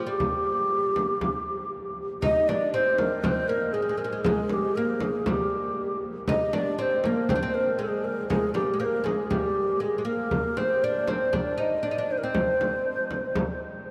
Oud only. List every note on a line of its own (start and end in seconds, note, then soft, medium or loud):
0.07 1.68 G3 medium
2.22 2.48 D#4 medium
2.49 2.73 D4 medium
2.74 3.23 C4 medium
3.24 3.50 C4 medium
3.49 3.73 A#3 medium
3.74 3.81 G#3 medium
3.82 3.88 G#3 soft
3.89 3.96 G#3 medium
3.98 4.03 G#3 medium
4.04 4.11 G#3 medium
4.13 4.20 G#3 medium
4.26 4.77 G#3 medium
4.77 5.27 A#3 medium
5.27 5.99 G3 medium
6.29 6.53 D#4 medium
6.53 6.78 D4 medium
6.79 7.04 C4 medium
7.05 7.31 A#3 medium
7.30 7.35 C4 medium
7.35 7.42 D4 medium
7.43 7.80 C4 medium
7.79 8.29 G#3 medium
8.30 8.54 G#3 medium
8.54 8.73 G3 medium
8.74 8.79 G#3 medium
8.80 9.03 A#3 medium
9.04 9.30 G#3 medium
9.30 9.80 G3 medium
9.80 9.97 G#3 medium
9.98 10.04 G#3 medium
10.05 10.58 A#3 medium
10.57 10.83 C4 medium
10.84 11.07 D4 medium
11.08 11.32 C4 medium
11.33 11.57 D4 medium
11.58 11.82 D#4 medium
11.83 11.91 D4 medium
11.91 11.98 D#4 medium
11.98 12.23 D4 medium
12.23 13.57 C4 medium